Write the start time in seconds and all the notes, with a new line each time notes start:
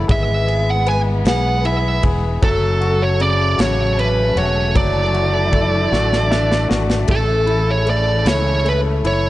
Already playing: E3 A3 E4
0.08 G#1 G#3 B3 E5, kick, ride
0.47 G#4, ride
0.70 F#5
0.87 B4 G#5, ride
1.25 B1 G#4 F#5, snare, ride
1.65 E4 E5, ride
2.03 E1 G#4, kick, ride
2.42 F#1 C#3 F#3 A3 A4, kick, ride
2.81 F#4, ride
3.02 C#5
3.20 C#3 D5, ride
3.57 A1 F#4 C#5, snare, ride
3.97 C#4 B4, ride
4.36 E1 F#4 C#5, ride
4.75 F#1 D3 E3 F#3 E4 D5, kick, ride
5.14 F#4, ride
5.52 A4, kick, ride
5.92 A1 F#4, snare
6.13 snare
6.30 D4 E5, snare
6.52 snare
6.69 G#1 F#4 D5, snare
6.90 snare
7.08 A1 C#3 A3 A4, kick, ride
7.46 E4, ride
7.71 C#5
7.87 A3 D5, ride
8.25 C#2 E4 C#5, snare, ride
8.64 A3 B4, ride
9.04 F#1 E4 C#5, ride